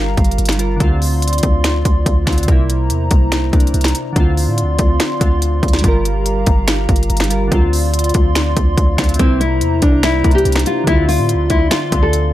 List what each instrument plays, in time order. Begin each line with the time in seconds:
Already playing: 808-style bass G1, synth keys G3 F4 A#4, analog synth pad G4 F5 A#5
0.17 808-style bass G1, kick, closed hi-hat
0.24 closed hi-hat
0.31 closed hi-hat
0.38 808-style bass G1, closed hi-hat
0.45 finger snap, snare, closed hi-hat
0.52 closed hi-hat
0.57 synth keys G3 F4 A#4, closed hi-hat
0.76 synth keys D3 C4
0.80 808-style bass D2, analog synth pad F4 D5 C6, synth keys F4, kick, closed hi-hat
1.02 open hi-hat
1.22 closed hi-hat
1.28 closed hi-hat
1.33 closed hi-hat
1.38 closed hi-hat
1.43 808-style bass D2, kick, closed hi-hat
1.64 finger snap, snare, closed hi-hat
1.85 808-style bass D2, kick, closed hi-hat
2.06 808-style bass D2, kick, closed hi-hat
2.25 808-style bass D2, synth keys D3 C4 F4, finger snap, kick, snare, closed hi-hat
2.32 closed hi-hat
2.38 closed hi-hat
2.43 synth keys C3, closed hi-hat
2.48 808-style bass C2, synth keys A#3 E4, analog synth pad E4 C5 A#5, kick, closed hi-hat
2.70 closed hi-hat
2.90 808-style bass E2, closed hi-hat
3.11 808-style bass C2, kick, closed hi-hat
3.32 finger snap, snare, closed hi-hat
3.51 808-style bass C2, synth keys C3 A#3 D4, kick, closed hi-hat
3.60 closed hi-hat
3.67 closed hi-hat
3.74 808-style bass C2, closed hi-hat
3.81 finger snap, snare, closed hi-hat
3.88 closed hi-hat
3.95 closed hi-hat
4.13 808-style bass D2, synth keys D3 C4, analog synth pad F4 D5 C6, kick, closed hi-hat
4.20 synth keys F4
4.37 open hi-hat
4.47 808-style bass A2
4.58 closed hi-hat
4.63 808-style bass D2
4.79 808-style bass D2, kick, closed hi-hat
5.00 finger snap, snare, closed hi-hat
5.19 808-style bass D2, synth keys D3 C4 F4, kick, closed hi-hat
5.42 closed hi-hat
5.63 808-style bass D2, kick, closed hi-hat
5.68 closed hi-hat
5.73 snare, closed hi-hat
5.79 synth keys G3, closed hi-hat
5.84 808-style bass G1, synth keys F4, analog synth pad G4 F5 A#5, kick, closed hi-hat
5.88 synth keys A#4
6.05 closed hi-hat
6.26 closed hi-hat
6.46 808-style bass G1, kick, closed hi-hat
6.68 finger snap, snare, closed hi-hat
6.89 808-style bass G1, kick, closed hi-hat
6.96 closed hi-hat
7.03 closed hi-hat
7.10 808-style bass G1, closed hi-hat
7.17 finger snap, snare, closed hi-hat
7.24 closed hi-hat
7.28 synth keys G3 F4 A#4, closed hi-hat
7.47 synth keys D3 C4
7.52 808-style bass D2, analog synth pad F4 D5 C6, synth keys F4, kick, closed hi-hat
7.73 open hi-hat
7.94 closed hi-hat
7.99 closed hi-hat
8.04 closed hi-hat
8.09 closed hi-hat
8.14 808-style bass D2, kick, closed hi-hat
8.35 finger snap, snare, closed hi-hat
8.57 808-style bass D2, kick, closed hi-hat
8.77 808-style bass D2, kick, closed hi-hat
8.97 808-style bass D2, synth keys D3 C4 F4, finger snap, kick, snare, closed hi-hat
9.04 closed hi-hat
9.09 closed hi-hat
9.14 synth keys C3, closed hi-hat
9.19 808-style bass C2, synth keys A#3 E4, nylon-string guitar C4, analog synth pad E4 C5 A#5, kick, closed hi-hat
9.40 nylon-string guitar E4, closed hi-hat
9.61 808-style bass E2, closed hi-hat
9.82 808-style bass C2, nylon-string guitar D4, kick, closed hi-hat
10.03 nylon-string guitar E4, finger snap, snare, closed hi-hat
10.22 808-style bass C2, synth keys C3 A#3 D4, kick, closed hi-hat
10.31 nylon-string guitar G4, closed hi-hat
10.38 closed hi-hat
10.45 808-style bass C2, closed hi-hat
10.52 finger snap, snare, closed hi-hat
10.59 closed hi-hat
10.66 nylon-string guitar F4, closed hi-hat
10.84 808-style bass D2, synth keys D3 C4, nylon-string guitar E4, analog synth pad F4 D5 C6, kick, closed hi-hat
10.91 synth keys F4
11.09 nylon-string guitar F4, open hi-hat
11.19 808-style bass A2
11.29 closed hi-hat
11.35 808-style bass D2
11.50 808-style bass D2, nylon-string guitar E4, kick, closed hi-hat
11.71 nylon-string guitar F4, finger snap, snare, closed hi-hat
11.91 808-style bass D2, synth keys D3 C4 F4, kick, closed hi-hat
12.03 nylon-string guitar A4
12.13 closed hi-hat